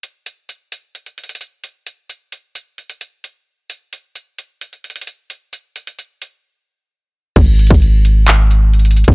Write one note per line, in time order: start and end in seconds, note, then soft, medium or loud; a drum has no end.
0.03 closed hi-hat medium
0.26 closed hi-hat medium
0.49 closed hi-hat medium
0.72 closed hi-hat medium
0.95 closed hi-hat medium
1.06 closed hi-hat soft
1.18 closed hi-hat soft
1.24 closed hi-hat medium
1.29 closed hi-hat medium
1.35 closed hi-hat medium
1.41 closed hi-hat medium
1.64 closed hi-hat medium
1.87 closed hi-hat medium
2.10 closed hi-hat medium
2.32 closed hi-hat medium
2.55 closed hi-hat medium
2.78 closed hi-hat soft
2.90 closed hi-hat medium
3.01 closed hi-hat medium
3.24 closed hi-hat medium
3.70 closed hi-hat medium
3.93 closed hi-hat medium
4.15 closed hi-hat medium
4.38 closed hi-hat medium
4.61 closed hi-hat medium
4.73 closed hi-hat soft
4.84 closed hi-hat soft
4.90 closed hi-hat medium
4.96 closed hi-hat medium
5.01 closed hi-hat medium
5.07 closed hi-hat medium
5.30 closed hi-hat medium
5.53 closed hi-hat medium
5.76 closed hi-hat medium
5.87 closed hi-hat medium
5.99 closed hi-hat medium
6.22 closed hi-hat medium
7.36 7.69 G#1 loud
7.36 kick loud
7.36 closed hi-hat medium
7.36 crash loud
7.59 closed hi-hat medium
7.67 9.04 G#1 loud
7.67 kick loud
7.67 closed hi-hat medium
7.74 closed hi-hat medium
7.82 closed hi-hat medium
8.05 closed hi-hat medium
8.28 clap loud
8.28 closed hi-hat medium
8.51 closed hi-hat medium
8.74 closed hi-hat soft
8.79 closed hi-hat medium
8.85 closed hi-hat medium
8.91 closed hi-hat medium
8.96 closed hi-hat medium
9.04 9.15 G#1 loud
9.04 kick loud
9.04 closed hi-hat medium
9.12 closed hi-hat medium